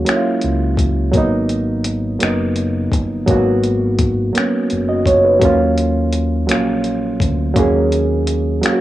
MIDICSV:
0, 0, Header, 1, 4, 480
1, 0, Start_track
1, 0, Key_signature, -6, "minor"
1, 0, Tempo, 714286
1, 761, Time_signature, 6, 3, 24, 8
1, 5919, End_track
2, 0, Start_track
2, 0, Title_t, "Reed electric piano"
2, 0, Program_c, 0, 4
2, 0, Control_c, 0, 64, 127
2, 0, Note_on_c, 0, 54, 78
2, 0, Note_on_c, 0, 58, 70
2, 0, Note_on_c, 0, 61, 67
2, 0, Note_on_c, 0, 65, 67
2, 0, Note_on_c, 0, 66, 83
2, 33, Note_off_c, 0, 54, 0
2, 33, Note_on_c, 0, 54, 64
2, 43, Note_off_c, 0, 58, 0
2, 43, Note_on_c, 0, 58, 56
2, 56, Note_off_c, 0, 61, 0
2, 56, Note_on_c, 0, 61, 56
2, 67, Note_on_c, 0, 64, 57
2, 98, Note_off_c, 0, 64, 0
2, 111, Note_off_c, 0, 65, 0
2, 111, Note_on_c, 0, 65, 72
2, 670, Note_off_c, 0, 54, 0
2, 675, Note_off_c, 0, 58, 0
2, 682, Note_off_c, 0, 61, 0
2, 709, Note_off_c, 0, 65, 0
2, 751, Note_on_c, 0, 54, 77
2, 764, Note_on_c, 0, 58, 67
2, 770, Control_c, 0, 64, 0
2, 774, Note_on_c, 0, 59, 67
2, 775, Note_off_c, 0, 66, 0
2, 788, Note_on_c, 0, 63, 90
2, 898, Control_c, 0, 64, 127
2, 1389, Note_off_c, 0, 54, 0
2, 1396, Note_off_c, 0, 58, 0
2, 1401, Note_off_c, 0, 59, 0
2, 1408, Note_off_c, 0, 63, 0
2, 1472, Note_on_c, 0, 54, 63
2, 1485, Note_on_c, 0, 58, 57
2, 1496, Note_on_c, 0, 59, 58
2, 1507, Note_on_c, 0, 63, 70
2, 2110, Note_off_c, 0, 54, 0
2, 2116, Note_off_c, 0, 58, 0
2, 2122, Note_off_c, 0, 59, 0
2, 2127, Note_off_c, 0, 63, 0
2, 2191, Note_on_c, 0, 54, 77
2, 2201, Note_on_c, 0, 58, 69
2, 2214, Note_on_c, 0, 59, 72
2, 2224, Note_on_c, 0, 66, 86
2, 2829, Note_off_c, 0, 54, 0
2, 2834, Note_off_c, 0, 58, 0
2, 2841, Note_off_c, 0, 59, 0
2, 2846, Note_off_c, 0, 66, 0
2, 2909, Note_on_c, 0, 54, 62
2, 2920, Note_on_c, 0, 58, 58
2, 2931, Note_on_c, 0, 59, 56
2, 2943, Note_on_c, 0, 61, 66
2, 3283, Note_on_c, 0, 75, 54
2, 3287, Note_on_c, 0, 66, 42
2, 3397, Note_off_c, 0, 75, 0
2, 3398, Note_off_c, 0, 66, 0
2, 3402, Note_on_c, 0, 73, 63
2, 3407, Note_on_c, 0, 65, 49
2, 3516, Note_off_c, 0, 73, 0
2, 3519, Note_off_c, 0, 65, 0
2, 3520, Note_on_c, 0, 71, 52
2, 3524, Note_on_c, 0, 63, 47
2, 3548, Note_off_c, 0, 54, 0
2, 3554, Note_off_c, 0, 58, 0
2, 3559, Note_off_c, 0, 59, 0
2, 3565, Note_off_c, 0, 61, 0
2, 3625, Note_on_c, 0, 54, 79
2, 3637, Note_on_c, 0, 58, 67
2, 3649, Note_on_c, 0, 61, 72
2, 3651, Control_c, 0, 64, 0
2, 3662, Note_on_c, 0, 65, 81
2, 3749, Note_off_c, 0, 71, 0
2, 3751, Note_off_c, 0, 63, 0
2, 3780, Control_c, 0, 64, 127
2, 4266, Note_off_c, 0, 54, 0
2, 4272, Note_off_c, 0, 58, 0
2, 4278, Note_off_c, 0, 61, 0
2, 4285, Note_off_c, 0, 65, 0
2, 4348, Note_on_c, 0, 54, 67
2, 4358, Note_on_c, 0, 58, 57
2, 4371, Note_on_c, 0, 61, 60
2, 4382, Note_on_c, 0, 65, 68
2, 4988, Note_off_c, 0, 54, 0
2, 4993, Note_off_c, 0, 58, 0
2, 4999, Note_off_c, 0, 61, 0
2, 5005, Note_off_c, 0, 65, 0
2, 5066, Note_on_c, 0, 54, 79
2, 5079, Note_on_c, 0, 58, 70
2, 5090, Note_on_c, 0, 61, 72
2, 5102, Note_on_c, 0, 68, 80
2, 5707, Note_off_c, 0, 54, 0
2, 5713, Note_off_c, 0, 58, 0
2, 5719, Note_off_c, 0, 61, 0
2, 5725, Note_off_c, 0, 68, 0
2, 5787, Note_on_c, 0, 54, 68
2, 5801, Note_on_c, 0, 58, 62
2, 5811, Note_on_c, 0, 61, 61
2, 5821, Note_on_c, 0, 65, 57
2, 5855, Note_off_c, 0, 65, 0
2, 5865, Note_on_c, 0, 66, 73
2, 5919, Note_off_c, 0, 54, 0
2, 5919, Note_off_c, 0, 58, 0
2, 5919, Note_off_c, 0, 61, 0
2, 5919, Note_off_c, 0, 66, 0
2, 5919, End_track
3, 0, Start_track
3, 0, Title_t, "Fingered electric bass"
3, 0, Program_c, 1, 33
3, 295, Note_on_c, 1, 37, 74
3, 741, Note_off_c, 1, 37, 0
3, 770, Note_on_c, 1, 32, 88
3, 1459, Note_off_c, 1, 32, 0
3, 1496, Note_on_c, 1, 30, 86
3, 1942, Note_off_c, 1, 30, 0
3, 1967, Note_on_c, 1, 31, 81
3, 2180, Note_off_c, 1, 31, 0
3, 2209, Note_on_c, 1, 32, 88
3, 2899, Note_off_c, 1, 32, 0
3, 3174, Note_on_c, 1, 30, 69
3, 3621, Note_off_c, 1, 30, 0
3, 3646, Note_on_c, 1, 39, 88
3, 4371, Note_off_c, 1, 39, 0
3, 4371, Note_on_c, 1, 34, 79
3, 4820, Note_off_c, 1, 34, 0
3, 4846, Note_on_c, 1, 38, 75
3, 5060, Note_off_c, 1, 38, 0
3, 5086, Note_on_c, 1, 39, 91
3, 5777, Note_off_c, 1, 39, 0
3, 5919, End_track
4, 0, Start_track
4, 0, Title_t, "Drums"
4, 43, Note_on_c, 9, 42, 62
4, 60, Note_on_c, 9, 26, 89
4, 110, Note_off_c, 9, 42, 0
4, 127, Note_off_c, 9, 26, 0
4, 279, Note_on_c, 9, 42, 43
4, 346, Note_off_c, 9, 42, 0
4, 520, Note_on_c, 9, 36, 69
4, 529, Note_on_c, 9, 42, 60
4, 587, Note_off_c, 9, 36, 0
4, 597, Note_off_c, 9, 42, 0
4, 762, Note_on_c, 9, 36, 90
4, 764, Note_on_c, 9, 42, 59
4, 830, Note_off_c, 9, 36, 0
4, 832, Note_off_c, 9, 42, 0
4, 1003, Note_on_c, 9, 42, 45
4, 1071, Note_off_c, 9, 42, 0
4, 1239, Note_on_c, 9, 42, 66
4, 1307, Note_off_c, 9, 42, 0
4, 1481, Note_on_c, 9, 42, 63
4, 1498, Note_on_c, 9, 26, 83
4, 1548, Note_off_c, 9, 42, 0
4, 1565, Note_off_c, 9, 26, 0
4, 1718, Note_on_c, 9, 42, 44
4, 1785, Note_off_c, 9, 42, 0
4, 1960, Note_on_c, 9, 36, 74
4, 1970, Note_on_c, 9, 42, 59
4, 2027, Note_off_c, 9, 36, 0
4, 2037, Note_off_c, 9, 42, 0
4, 2201, Note_on_c, 9, 36, 87
4, 2202, Note_on_c, 9, 42, 57
4, 2268, Note_off_c, 9, 36, 0
4, 2269, Note_off_c, 9, 42, 0
4, 2443, Note_on_c, 9, 42, 46
4, 2510, Note_off_c, 9, 42, 0
4, 2679, Note_on_c, 9, 42, 63
4, 2680, Note_on_c, 9, 36, 78
4, 2746, Note_off_c, 9, 42, 0
4, 2748, Note_off_c, 9, 36, 0
4, 2924, Note_on_c, 9, 42, 58
4, 2941, Note_on_c, 9, 26, 89
4, 2991, Note_off_c, 9, 42, 0
4, 3009, Note_off_c, 9, 26, 0
4, 3158, Note_on_c, 9, 42, 43
4, 3225, Note_off_c, 9, 42, 0
4, 3397, Note_on_c, 9, 36, 68
4, 3406, Note_on_c, 9, 42, 61
4, 3464, Note_off_c, 9, 36, 0
4, 3474, Note_off_c, 9, 42, 0
4, 3639, Note_on_c, 9, 36, 88
4, 3640, Note_on_c, 9, 42, 57
4, 3706, Note_off_c, 9, 36, 0
4, 3707, Note_off_c, 9, 42, 0
4, 3882, Note_on_c, 9, 42, 48
4, 3949, Note_off_c, 9, 42, 0
4, 4116, Note_on_c, 9, 42, 61
4, 4183, Note_off_c, 9, 42, 0
4, 4360, Note_on_c, 9, 42, 63
4, 4377, Note_on_c, 9, 26, 94
4, 4427, Note_off_c, 9, 42, 0
4, 4444, Note_off_c, 9, 26, 0
4, 4596, Note_on_c, 9, 42, 44
4, 4663, Note_off_c, 9, 42, 0
4, 4838, Note_on_c, 9, 36, 78
4, 4849, Note_on_c, 9, 42, 60
4, 4906, Note_off_c, 9, 36, 0
4, 4916, Note_off_c, 9, 42, 0
4, 5080, Note_on_c, 9, 36, 88
4, 5081, Note_on_c, 9, 42, 61
4, 5147, Note_off_c, 9, 36, 0
4, 5149, Note_off_c, 9, 42, 0
4, 5323, Note_on_c, 9, 42, 47
4, 5390, Note_off_c, 9, 42, 0
4, 5558, Note_on_c, 9, 42, 65
4, 5626, Note_off_c, 9, 42, 0
4, 5800, Note_on_c, 9, 42, 63
4, 5818, Note_on_c, 9, 26, 90
4, 5867, Note_off_c, 9, 42, 0
4, 5885, Note_off_c, 9, 26, 0
4, 5919, End_track
0, 0, End_of_file